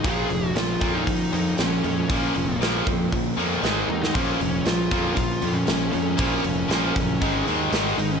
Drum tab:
HH |o-o-o-o-o-o-o-o-|o-o-o-o-o-o-o---|o-o-o-o-o-o-o-o-|o-o-o-o-o-o-o-o-|
SD |----o-------o---|----o-------o--o|----o-------o---|----o-------o---|
T1 |----------------|--------------o-|----------------|----------------|
BD |o-----o-o-------|o-----o-o-------|o-----o-o-------|o-----o-o-------|